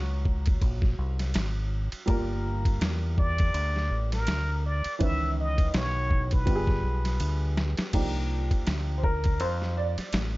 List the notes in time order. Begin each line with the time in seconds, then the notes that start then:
Already playing: C#2 F#3 C#4 D#4 F#4
0.25 kick
0.46 kick, ride
0.62 A#1, kick, ride
0.82 kick, snare
0.99 C2
1.19 snare, ride
1.34 G#1, snare, hi-hat pedal, ride
1.92 ride
2.06 G1 G3 A#3 F4 A#4, kick, ride
2.65 kick, ride
2.81 E2, snare, hi-hat pedal, ride
3.18 D5, kick
3.38 kick, ride
3.54 D2, ride
3.76 snare
3.91 A1
4.12 A#4, snare, ride
4.27 D2, snare, hi-hat pedal, ride
4.66 D5
4.84 muted fingered electric bass stroke, ride
4.99 C#2 D#3 E3 C#4 B4 E5, kick, ride
5.39 D#5
5.58 kick, ride
5.74 B1 C#5, snare, hi-hat pedal, ride
6.11 kick
6.31 B4, kick, ride
6.46 G1 G3 B3 F4 G4, kick, ride
6.56 G#4
6.67 kick, snare
6.84 B1
7.05 snare, ride
7.20 D2, hi-hat pedal, ride
7.57 snare
7.77 muted fingered electric bass stroke, snare, ride
7.93 C2 F3 A#3 D4 D#4 G4, kick, crash, ride
8.51 kick, ride
8.67 D2, snare, hi-hat pedal, ride
8.98 C5
9.04 A#4, kick
9.24 kick, ride
9.40 F2 C5, ride
9.62 snare
9.77 D5
9.98 muted fingered electric bass stroke, snare, ride
10.13 A1, snare, hi-hat pedal, ride